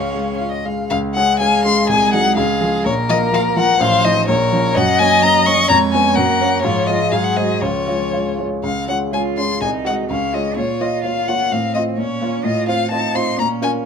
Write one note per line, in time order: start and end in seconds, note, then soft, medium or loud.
0.00 0.88 C#2 medium
0.00 0.39 C#4 medium
0.00 0.39 C#5 medium
0.00 0.34 F5 soft
0.15 0.55 G#3 soft
0.38 0.81 F4 soft
0.38 0.51 F5 medium
0.51 0.67 D#5 medium
0.65 0.91 G#3 soft
0.65 0.91 F5 medium
0.90 1.15 C#2 medium
0.90 2.87 G#3 medium
0.90 0.98 F5 medium
1.15 1.38 G#3 soft
1.15 1.39 C#4 soft
1.15 1.39 G#4 medium
1.15 1.39 F#5 medium
1.40 1.63 G#3 soft
1.40 1.63 C#4 soft
1.40 1.63 G#4 soft
1.40 1.86 F5 medium
1.40 1.64 G#5 medium
1.64 1.87 G#3 soft
1.64 1.87 C#4 soft
1.64 1.87 G#4 medium
1.64 1.89 C6 medium
1.88 2.13 C2 medium
1.88 2.36 G#4 medium
1.88 2.13 G#5 medium
2.14 2.35 F#3 medium
2.14 2.35 D#4 medium
2.14 2.36 G#4 medium
2.14 2.36 F#5 medium
2.36 2.60 C#2 medium
2.36 2.86 G#4 medium
2.36 2.84 F5 medium
2.61 2.83 F3 soft
2.61 2.83 F4 soft
2.61 2.83 G#4 medium
2.85 3.09 A#1 medium
2.85 3.80 A#3 medium
2.85 3.79 A#4 medium
2.85 2.94 C#5 medium
3.09 3.31 F3 medium
3.09 3.31 F4 medium
3.09 3.31 A#4 medium
3.09 3.18 D#5 medium
3.32 3.54 F3 soft
3.32 3.54 F4 medium
3.32 3.55 A#4 medium
3.32 3.42 F5 medium
3.56 3.78 F3 medium
3.56 3.78 F4 medium
3.56 3.79 A#4 medium
3.56 3.83 F#5 medium
3.80 4.04 A1 medium
3.80 4.28 F3 medium
3.80 4.27 C5 medium
3.80 4.06 F5 loud
4.04 4.26 F3 medium
4.04 4.26 D#4 medium
4.04 4.27 C5 medium
4.04 4.27 D#5 medium
4.28 4.52 A#1 medium
4.28 4.78 F3 medium
4.28 4.77 A#4 medium
4.28 4.78 C#5 medium
4.53 4.74 F3 medium
4.53 4.74 C#4 medium
4.53 4.74 C#5 medium
4.75 4.99 F#2 medium
4.75 5.69 F#3 medium
4.75 5.70 D#5 loud
4.75 5.00 F#5 medium
4.99 5.21 A#3 medium
4.99 5.21 C#4 medium
4.99 5.21 C#5 medium
4.99 5.24 G#5 loud
5.22 5.44 A#3 medium
5.22 5.45 C#4 soft
5.22 5.45 C#5 medium
5.22 5.48 A#5 medium
5.46 5.68 A#3 medium
5.46 5.68 C#4 soft
5.46 5.68 C#5 medium
5.46 5.68 C#6 loud
5.68 5.93 F2 medium
5.68 6.17 G#3 medium
5.68 6.15 C#5 medium
5.68 5.77 A#5 loud
5.93 6.15 B3 medium
5.93 6.15 C#4 medium
5.93 6.15 C#5 medium
5.93 6.17 G#5 medium
6.15 6.40 F#2 medium
6.15 6.64 A#3 medium
6.15 6.65 A#4 medium
6.15 6.62 F#5 medium
6.40 6.62 A#3 soft
6.40 6.62 C#4 soft
6.40 6.62 C#5 medium
6.62 6.87 G#2 medium
6.62 7.13 F3 medium
6.62 7.11 F4 medium
6.62 6.88 C#5 medium
6.87 7.10 G#3 soft
6.87 7.10 F4 soft
6.87 7.10 C#5 soft
6.87 7.13 D#5 medium
7.11 7.36 G#2 medium
7.11 7.63 F#3 medium
7.11 7.64 G#4 medium
7.11 7.25 F5 medium
7.24 7.38 F#5 medium
7.36 7.60 G#3 soft
7.36 7.60 F#4 soft
7.36 7.60 C5 soft
7.36 7.62 D#5 medium
7.61 7.87 C#2 medium
7.61 8.43 F3 soft
7.61 8.39 F4 medium
7.61 8.38 C#5 medium
7.87 8.10 G#3 soft
7.87 8.10 F4 soft
7.87 8.11 C#5 soft
8.13 8.36 G#3 soft
8.13 8.36 F4 soft
8.13 8.36 C#5 soft
8.38 8.61 G#3 soft
8.38 8.62 F4 soft
8.38 8.62 C#5 soft
8.63 8.88 C#2 medium
8.63 8.87 F5 medium
8.88 9.10 G#3 soft
8.88 9.07 C#4 soft
8.88 9.10 F4 soft
8.88 9.11 C#5 soft
8.88 8.97 F#5 medium
9.12 9.35 G#3 soft
9.12 9.35 F4 soft
9.12 9.59 F4 medium
9.12 9.35 C#5 soft
9.12 9.21 G#5 medium
9.38 9.60 G#3 soft
9.38 9.56 C#4 soft
9.38 9.60 F4 soft
9.38 9.60 C#5 soft
9.38 9.61 C6 medium
9.61 9.85 C2 medium
9.61 10.09 D#4 medium
9.61 9.69 G#5 medium
9.85 10.08 G#3 soft
9.85 10.04 F#4 medium
9.85 10.08 F#4 soft
9.85 10.08 D#5 soft
9.85 9.94 F#5 medium
10.10 10.33 C#2 soft
10.10 10.59 C#4 soft
10.10 10.36 F5 medium
10.34 10.55 G#3 soft
10.34 10.51 F4 soft
10.34 10.56 F4 soft
10.34 10.56 C#5 soft
10.34 10.57 D#5 medium
10.57 10.80 A#2 soft
10.57 11.51 F4 medium
10.57 10.82 C#5 medium
10.80 11.02 A#3 soft
10.80 11.02 F4 soft
10.80 10.99 F4 medium
10.80 11.02 C#5 soft
10.80 11.04 D#5 medium
11.03 11.25 A#3 soft
11.03 11.26 F4 soft
11.03 11.26 C#5 soft
11.03 11.29 F5 medium
11.28 11.49 A#3 soft
11.28 11.50 F4 soft
11.28 11.46 F4 medium
11.28 11.50 C#5 soft
11.28 11.53 F#5 medium
11.52 11.74 A2 medium
11.52 12.01 C4 medium
11.52 11.74 F5 medium
11.74 11.96 C4 soft
11.74 11.96 F4 soft
11.74 11.93 F4 medium
11.74 11.82 D#5 medium
11.74 11.96 D#5 soft
11.98 12.21 A#2 medium
11.98 12.46 C#4 medium
11.98 12.44 C#5 medium
12.21 12.42 A#3 soft
12.21 12.43 F4 soft
12.21 12.40 F4 medium
12.21 12.43 C#5 soft
12.44 12.67 A2 medium
12.44 12.92 F4 medium
12.44 12.68 D#5 medium
12.67 12.89 C4 soft
12.67 12.89 F4 soft
12.67 12.86 F4 medium
12.67 12.90 C5 soft
12.67 12.90 F5 medium
12.91 13.13 C4 soft
12.91 13.41 D#4 medium
12.91 13.13 F4 soft
12.91 13.13 C5 soft
12.91 13.17 A5 medium
13.14 13.36 C4 soft
13.14 13.36 F4 soft
13.14 13.33 F4 medium
13.14 13.37 C5 soft
13.14 13.39 C6 medium
13.38 13.61 A#2 medium
13.38 13.86 C#4 medium
13.38 13.48 A#5 medium
13.61 13.83 C#4 soft
13.61 13.80 C#4 medium
13.61 13.83 F4 soft
13.61 13.83 A#4 soft
13.61 13.70 G#5 medium